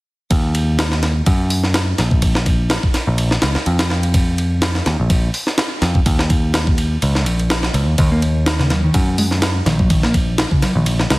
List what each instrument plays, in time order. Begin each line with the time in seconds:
0.31 picked electric bass D#2, kick, ride
0.55 ride
0.79 snare, ride
0.92 snare
1.03 snare, ride
1.26 picked electric bass F#2, kick, ride
1.50 open hi-hat
1.64 snare
1.74 snare, ride
1.98 picked electric bass A#1, snare, ride
2.11 kick
2.22 kick, ride
2.35 snare
2.46 kick, ride
2.70 snare, ride
2.83 kick
2.94 snare, ride
3.07 picked electric bass A#1
3.18 ride
3.31 snare
3.42 picked electric bass C#2, snare, ride
3.55 muted picked electric bass stroke, snare
3.66 picked electric bass F2, ride
3.79 snare, ride
3.90 snare
4.03 ride
4.14 kick, ride
4.38 ride
4.62 snare, ride
4.75 snare
4.86 picked electric bass D#2, snare, ride
5.00 picked electric bass A#1
5.10 kick, ride
5.34 open hi-hat
5.47 snare
5.58 snare, ride
5.82 picked electric bass F2, snare, ride
5.95 kick
6.06 picked electric bass D#2, kick, ride
6.19 snare
6.30 kick, ride
6.54 snare, ride
6.67 kick
6.78 ride
7.02 picked electric bass C#2, ride
7.15 snare
7.26 picked electric bass A#1, ride
7.39 ride
7.50 snare, ride
7.63 snare
7.74 picked electric bass C#2, ride
7.87 picked electric bass D#2
7.98 picked electric bass D#2 D#3, kick, ride
8.12 picked electric bass A#3
8.22 ride
8.46 picked electric bass D#4, snare, ride
8.59 picked electric bass C#3, snare
8.70 picked electric bass F#3, snare, ride
8.84 picked electric bass D#3
8.94 picked electric bass F#2, kick, ride
9.18 picked electric bass G#3, open hi-hat
9.31 snare
9.42 snare, ride
9.66 picked electric bass A#1 D#3, snare, ride
9.79 picked electric bass F#3, kick
9.90 picked electric bass D#3, kick, ride
10.03 picked electric bass A#3, snare
10.14 kick, ride
10.38 picked electric bass D#4, snare, ride
10.51 picked electric bass C#3, kick
10.62 picked electric bass F#3, snare, ride
10.75 picked electric bass A#1 D#3
10.86 ride
11.00 snare
11.10 picked electric bass C#2 G#3, snare, ride